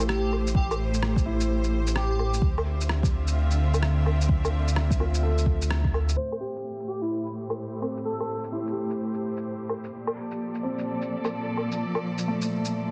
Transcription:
Already playing: A1 A2 A3 E4 G4 A4 C5
0.00 low woodblock, shaker
0.08 G4, cross-stick
0.33 low woodblock
0.47 shaker
0.55 G4, kick
0.71 G4, low woodblock, shaker
0.94 shaker
1.02 cross-stick
1.16 kick, shaker
1.25 E4
1.41 shaker
1.64 shaker
1.87 shaker
1.96 G4, cross-stick
2.19 low woodblock
2.34 shaker
2.41 D2 D3, kick
2.52 E5
2.58 C4, low woodblock
2.69 F4
2.81 shaker
2.89 cross-stick
3.03 kick, shaker
3.28 shaker
3.51 shaker
3.74 low woodblock, shaker
3.83 cross-stick
4.06 low woodblock
4.21 shaker
4.29 kick
4.45 low woodblock, shaker
4.68 shaker
4.76 cross-stick
4.91 kick, shaker
5.00 F4, low woodblock
5.15 shaker
5.23 A4
5.38 shaker
5.46 kick
5.62 shaker
5.71 cross-stick
5.84 kick
5.94 low woodblock
6.09 shaker
6.16 A2 C5
6.32 A3 G4, low woodblock
6.40 G4
6.56 shaker
6.60 C5
6.80 shaker
6.87 G4
7.02 E4, shaker
7.26 shaker
7.50 low woodblock, shaker
7.80 C4, low woodblock
7.97 shaker
8.05 A4
8.20 low woodblock
8.44 shaker
8.52 E4
8.67 shaker
8.72 G4
8.90 shaker
9.14 shaker
9.37 shaker
9.69 low woodblock
9.84 shaker
9.92 A#2
10.03 D5
10.07 F3, low woodblock
10.14 A4
10.31 shaker
10.55 shaker
10.63 C4
10.79 shaker
11.02 shaker
11.25 low woodblock, shaker
11.57 low woodblock
11.72 shaker
11.95 low woodblock
12.18 shaker
12.28 A3
12.42 shaker
12.65 shaker

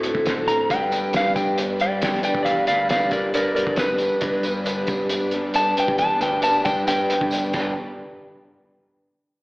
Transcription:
Already playing: A2 C4 F#4 A4
0.03 D3 A3 C4 F#4 A4, closed hi-hat
0.15 A2, kick
0.25 A2 D3 A3 C4 F#4 A4, snare, closed hi-hat
0.48 C4 A#5, closed hi-hat
0.69 G2 D3 G3 B3 D4 G4 B4 D5 G5, kick, closed hi-hat, tambourine
0.91 G3 B3 D4 B4, closed hi-hat, tambourine
1.13 G2 D3 G3 B3 D4 B4 F5, snare, closed hi-hat, tambourine
1.35 G2 G3 B3 D4 B4 G5, kick, closed hi-hat, tambourine
1.57 G3 B3 D4 B4, closed hi-hat, tambourine
1.80 G3 B3 D4 B4 D5 G5, closed hi-hat
2.02 G2 D3 G3 B3 D4 B4 D5 G5, snare, closed hi-hat, tambourine
2.14 snare
2.23 D4 D5 G5, closed hi-hat, tambourine
2.35 G2, kick
2.43 E2 G2 D3 G3 B3 D5 F5, kick, closed hi-hat, tambourine
2.47 D4 B4
2.66 D2 G3 B3 D4 B4 D5 F5, closed hi-hat, tambourine
2.89 G2 D3 G3 B3 D4 B4 D5 F5, snare, closed hi-hat, tambourine
3.11 G2 G3 B3 D4 A#4 B4 D5, kick, closed hi-hat, tambourine
3.33 G2 G3 B3 D4 A#4 B4 D5, closed hi-hat, tambourine
3.55 G3 B3 D4 A#4 B4 D5, closed hi-hat
3.66 G2, kick
3.76 G2 D3 G3 B3 D4 B4, snare, closed hi-hat, tambourine
3.98 D4, closed hi-hat, tambourine
4.21 G2 D3 G3 B3 D4 G4 B4 D5, kick, closed hi-hat, tambourine
4.43 G3 B3 D4 B4, closed hi-hat, tambourine
4.63 G2 D3 G3 B3 D4 B4, closed hi-hat, tambourine
4.86 G2 G3 B3 D4 B4, kick, closed hi-hat, tambourine
5.09 G3 B3 D4 B4, closed hi-hat, tambourine
5.31 B3 D4 B4, closed hi-hat
5.36 G3
5.54 G2 D3 G3 B3 A5, closed hi-hat, tambourine
5.58 D4 B4
5.77 D4 G5, closed hi-hat, tambourine
5.88 G2, kick
5.98 E2 G2 D3 G3 B3 D4 A5, kick, closed hi-hat, tambourine
6.02 B4
6.21 D2 B3 D4 B4 G5, closed hi-hat, tambourine
6.25 G3
6.42 G2 D3 G3 B3 D4 B4 A5, closed hi-hat, tambourine
6.65 G2 G3 B3 D4 B4 G5, kick, closed hi-hat, tambourine
6.87 G2 G3 B3 D4 B4 G5, closed hi-hat, tambourine
7.10 G3 B3 D4 B4, closed hi-hat, tambourine
7.21 G2, kick
7.31 G2 D3 G3 B3 D4, closed hi-hat, tambourine
7.35 B4
7.53 G1 G2 D3 G3 B3 D4 G4 B4 D5, kick, crash, tambourine
7.57 B4

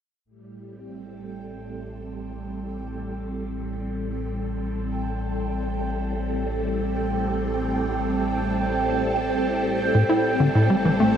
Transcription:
0.25 A1 A2 G5
0.29 G3
0.67 C4
0.87 A4
9.94 A1 A2
10.09 E4
10.40 D3
10.55 A2
10.70 G3
10.85 E3
11.00 A3

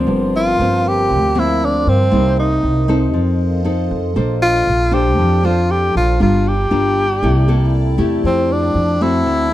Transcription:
Already playing: F3 A#3 C4 A#4 C6
0.07 G1 G2 F5 A5
0.36 F4
0.60 G1 F3 A#3 C4
0.88 G4
1.09 D2 D3
1.35 F3 A#3 C4
1.39 E4
1.65 D4
1.87 G2 C4
2.11 C2 C3 G3 A#3 D#4 D#5 G5
2.39 D#4
2.63 C2
2.88 C4 D#4 A4
3.13 F2 F3 A4 D#5 F5
3.64 C4 D#4 A4
3.91 F2
4.16 A#1 A#3 D4 A4 C5 D5 A5
4.42 F4
4.67 A#1
4.91 D4 G4 A4 C5
5.18 F2 F3
5.43 D4 F4 A4 C5
5.71 G4
5.95 A#1 F4
6.20 G1 G3 D4 F4 A#4 D5 G5 A#5
6.48 G4
6.71 G1 D4 F4 A#4
7.22 C2 C3 A#3 E4 A4 G5 A5
7.48 A#3 E4 A4
7.98 E2 A3 E4 G4
8.24 F2 F3 C4 E5 G5 A5
8.52 D4
8.75 F2
9.01 A3 C4 E4 F#4
9.26 D2 D3 F#4 D5 C6

